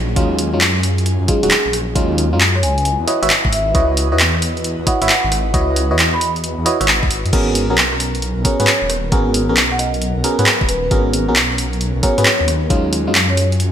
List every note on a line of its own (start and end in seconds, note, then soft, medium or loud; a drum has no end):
0.00 0.15 A#1 loud
0.00 2.59 F#3 medium
0.00 2.59 C#4 medium
0.00 2.59 F4 medium
0.00 2.59 G#4 medium
0.16 0.55 D#2 loud
0.16 0.50 F#3 medium
0.16 0.50 G#3 medium
0.16 0.50 C#4 medium
0.16 0.50 D#4 medium
0.16 0.50 F4 loud
0.16 kick loud
0.16 closed hi-hat medium
0.39 open hi-hat loud
0.53 1.18 F#2 loud
0.53 0.59 F#3 medium
0.53 0.59 G#3 medium
0.53 0.59 C#4 medium
0.53 0.59 D#4 medium
0.53 0.59 F4 medium
0.61 clap loud
0.61 closed hi-hat medium
0.76 cross-stick soft
0.83 open hi-hat medium
0.98 closed hi-hat soft
1.06 closed hi-hat medium
1.21 1.27 F#2 loud
1.28 1.41 F#3 medium
1.28 1.41 G#3 medium
1.28 1.41 C#4 medium
1.28 1.41 D#4 medium
1.28 1.41 F4 medium
1.28 1.73 G#4 medium
1.28 kick loud
1.28 open hi-hat loud
1.43 1.50 D#1 medium
1.43 1.53 F#3 medium
1.43 1.53 G#3 medium
1.43 1.53 C#4 medium
1.43 1.53 D#4 medium
1.43 1.53 F#4 loud
1.43 closed hi-hat medium
1.51 clap loud
1.51 closed hi-hat medium
1.66 1.94 A#1 loud
1.73 cross-stick soft
1.73 open hi-hat medium
1.95 2.34 D#2 loud
1.95 2.29 F#3 medium
1.95 2.29 G#3 medium
1.95 2.29 C#4 medium
1.95 2.29 D#4 medium
1.95 2.29 F4 loud
1.95 kick loud
1.95 closed hi-hat medium
2.18 open hi-hat loud
2.33 2.64 F#2 medium
2.33 2.38 F#3 medium
2.33 2.38 G#3 medium
2.33 2.38 C#4 medium
2.33 2.38 D#4 medium
2.33 2.38 F4 medium
2.41 clap loud
2.41 closed hi-hat medium
2.55 2.61 C#5 medium
2.55 cross-stick soft
2.63 2.97 C#2 medium
2.63 7.29 E4 medium
2.63 7.29 F#4 medium
2.63 7.29 B4 loud
2.63 7.29 D#5 medium
2.63 2.72 G#5 medium
2.63 open hi-hat medium
2.78 2.82 G#5 medium
2.78 closed hi-hat soft
2.85 closed hi-hat medium
3.00 3.07 E2 loud
3.07 3.20 E4 medium
3.07 3.20 F#4 medium
3.07 3.20 B4 medium
3.07 3.20 C#5 medium
3.07 3.20 D#5 medium
3.07 open hi-hat loud
3.22 3.29 G#1 medium
3.22 3.33 E4 medium
3.22 3.33 F#4 medium
3.22 3.33 B4 medium
3.22 3.33 C#5 medium
3.22 3.33 E5 loud
3.22 closed hi-hat medium
3.30 clap loud
3.30 closed hi-hat medium
3.45 3.73 G#1 loud
3.45 kick loud
3.53 3.62 E5 medium
3.53 open hi-hat medium
3.67 3.72 E5 medium
3.75 4.13 C#2 loud
3.75 4.08 E4 medium
3.75 4.08 F#4 medium
3.75 4.08 B4 medium
3.75 4.08 C#5 medium
3.75 4.08 D#5 loud
3.75 kick loud
3.75 closed hi-hat medium
3.97 open hi-hat loud
4.12 4.76 E2 loud
4.12 4.18 E4 medium
4.12 4.17 F#4 medium
4.12 4.17 B4 medium
4.12 4.17 C#5 medium
4.12 4.17 D#5 medium
4.20 clap loud
4.20 closed hi-hat medium
4.34 cross-stick soft
4.42 open hi-hat loud
4.57 closed hi-hat soft
4.64 closed hi-hat medium
4.79 4.86 E2 loud
4.87 4.99 E4 medium
4.87 4.99 F#4 medium
4.87 4.99 B4 medium
4.87 4.99 C#5 medium
4.87 4.99 D#5 medium
4.87 5.31 F#5 medium
4.87 kick loud
4.87 open hi-hat loud
5.02 5.08 G#1 medium
5.02 5.12 E4 medium
5.02 5.12 F#4 medium
5.02 5.12 B4 medium
5.02 5.12 C#5 medium
5.02 5.12 E5 loud
5.02 closed hi-hat medium
5.09 clap loud
5.09 closed hi-hat medium
5.24 5.52 G#1 loud
5.32 cross-stick soft
5.32 open hi-hat medium
5.54 5.93 C#2 loud
5.54 5.87 E4 medium
5.54 5.87 F#4 medium
5.54 5.87 B4 medium
5.54 5.87 C#5 medium
5.54 5.87 D#5 loud
5.54 kick loud
5.54 closed hi-hat medium
5.76 open hi-hat loud
5.91 6.55 E2 loud
5.91 5.97 E4 medium
5.91 5.97 F#4 medium
5.91 5.97 B4 medium
5.91 5.97 C#5 medium
5.91 5.97 D#5 medium
5.99 clap loud
5.99 closed hi-hat medium
6.14 6.20 B5 medium
6.14 cross-stick soft
6.21 open hi-hat medium
6.36 closed hi-hat soft
6.44 closed hi-hat medium
6.58 6.65 E2 loud
6.66 6.78 E4 loud
6.66 6.78 F#4 medium
6.66 6.78 B4 medium
6.66 6.78 C#5 medium
6.66 6.78 D#5 loud
6.66 open hi-hat loud
6.80 7.05 G#1 medium
6.80 6.86 E4 medium
6.80 6.86 F#4 medium
6.80 6.86 B4 medium
6.80 6.86 C#5 medium
6.80 6.86 E5 medium
6.80 cross-stick soft
6.80 closed hi-hat medium
6.88 clap loud
6.88 closed hi-hat medium
7.03 7.10 E2 loud
7.03 kick loud
7.10 7.23 G#1 medium
7.10 open hi-hat medium
7.25 7.32 F#2 medium
7.25 closed hi-hat soft
7.33 7.72 G#1 loud
7.33 13.72 F#3 medium
7.33 7.67 B3 medium
7.33 12.44 B3 medium
7.33 13.72 C#4 medium
7.33 7.67 C#4 medium
7.33 7.67 F#4 medium
7.33 7.67 G#4 medium
7.33 7.67 A#4 loud
7.33 12.44 A#4 medium
7.33 kick loud
7.33 closed hi-hat medium
7.33 crash medium
7.55 open hi-hat loud
7.70 8.34 B1 loud
7.70 7.76 B3 medium
7.70 7.76 C#4 medium
7.70 7.76 F#4 medium
7.70 7.76 G#4 medium
7.70 7.76 A#4 medium
7.78 clap loud
7.78 closed hi-hat medium
7.93 cross-stick soft
8.00 open hi-hat loud
8.15 closed hi-hat soft
8.22 closed hi-hat medium
8.37 8.44 B1 loud
8.44 8.57 B3 medium
8.44 8.57 C#4 medium
8.44 8.57 F#4 medium
8.44 8.57 G#4 medium
8.44 8.57 A#4 medium
8.44 8.89 C#5 medium
8.44 kick loud
8.44 open hi-hat loud
8.60 8.66 G#2 medium
8.60 8.70 B3 medium
8.60 8.70 C#4 medium
8.60 8.70 F#4 medium
8.60 8.70 G#4 medium
8.60 8.70 B4 loud
8.60 closed hi-hat medium
8.67 clap loud
8.67 closed hi-hat medium
8.82 9.10 D#1 medium
8.90 cross-stick soft
8.90 open hi-hat loud
9.12 9.51 G#1 loud
9.12 9.46 B3 medium
9.12 9.46 C#4 medium
9.12 9.46 F#4 medium
9.12 9.46 G#4 medium
9.12 9.46 A#4 loud
9.12 kick loud
9.12 closed hi-hat medium
9.34 open hi-hat loud
9.49 10.13 B1 medium
9.49 9.55 B3 medium
9.49 9.55 C#4 medium
9.49 9.55 F#4 medium
9.49 9.55 G#4 medium
9.49 9.55 A#4 medium
9.57 clap loud
9.57 closed hi-hat medium
9.71 9.78 F#5 medium
9.71 cross-stick soft
9.79 9.88 D#5 medium
9.79 open hi-hat medium
9.94 9.99 D#5 medium
9.94 closed hi-hat soft
10.02 closed hi-hat medium
10.16 10.23 B1 loud
10.24 10.37 B3 medium
10.24 10.37 C#4 medium
10.24 10.37 F#4 medium
10.24 10.37 G#4 medium
10.24 10.37 A#4 medium
10.24 open hi-hat loud
10.39 10.45 G#2 medium
10.39 10.49 B3 medium
10.39 10.49 C#4 medium
10.39 10.49 F#4 medium
10.39 10.49 G#4 medium
10.39 10.49 B4 loud
10.39 closed hi-hat medium
10.46 clap loud
10.46 closed hi-hat medium
10.61 10.90 D#1 loud
10.61 kick loud
10.68 10.78 B4 medium
10.68 open hi-hat loud
10.84 10.88 B4 medium
10.91 11.30 G#1 loud
10.91 11.25 B3 medium
10.91 11.25 C#4 medium
10.91 11.25 F#4 medium
10.91 11.25 G#4 medium
10.91 11.25 A#4 loud
10.91 kick loud
10.91 closed hi-hat medium
11.14 open hi-hat loud
11.28 11.93 B1 loud
11.28 11.34 B3 medium
11.28 11.34 C#4 medium
11.28 11.34 F#4 medium
11.28 11.34 G#4 medium
11.28 11.34 A#4 medium
11.36 clap loud
11.36 closed hi-hat medium
11.51 cross-stick soft
11.58 open hi-hat medium
11.73 closed hi-hat soft
11.81 closed hi-hat medium
11.96 12.02 B1 loud
12.03 12.16 B3 medium
12.03 12.16 C#4 medium
12.03 12.16 F#4 medium
12.03 12.16 G#4 medium
12.03 12.16 A#4 medium
12.03 12.48 C#5 medium
12.03 kick loud
12.03 open hi-hat loud
12.18 12.25 G#2 medium
12.18 12.28 B3 medium
12.18 12.28 C#4 medium
12.18 12.28 F#4 medium
12.18 12.28 G#4 medium
12.18 12.28 B4 loud
12.18 closed hi-hat medium
12.25 clap loud
12.25 closed hi-hat medium
12.41 12.69 D#2 loud
12.48 13.72 F4 medium
12.48 13.72 G#4 medium
12.48 cross-stick soft
12.48 open hi-hat medium
12.70 13.09 D#2 loud
12.70 13.04 F#3 medium
12.70 13.04 G#3 medium
12.70 13.04 C#4 medium
12.70 13.04 D#4 medium
12.70 13.04 F4 loud
12.70 kick loud
12.70 closed hi-hat medium
12.93 open hi-hat loud
13.07 13.72 F#2 medium
13.07 13.13 F#3 medium
13.07 13.13 G#3 medium
13.07 13.13 C#4 medium
13.07 13.13 D#4 medium
13.07 13.13 F4 medium
13.15 clap loud
13.15 closed hi-hat medium
13.30 13.36 C#5 medium
13.30 cross-stick soft
13.37 open hi-hat medium
13.52 closed hi-hat soft
13.60 closed hi-hat medium